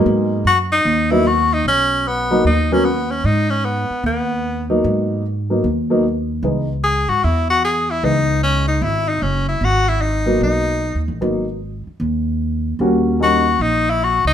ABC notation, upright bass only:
X:1
M:4/4
L:1/8
Q:"Swing" 1/4=151
K:G#m
V:1 name="Upright bass" clef=bass
G,,2 F,,2 D,,4 | B,,,4 D,,4 | G,,3 z D,,4 | G,,4 D,,4 |
C,,3 G,, E,,4 | C,,4 G,,,2 F,,,2 | G,,,4 B,,,2- (3B,,, D,, =A,,, | G,,,3 z D,,4 |
D,,4 A,,,3 C,, |]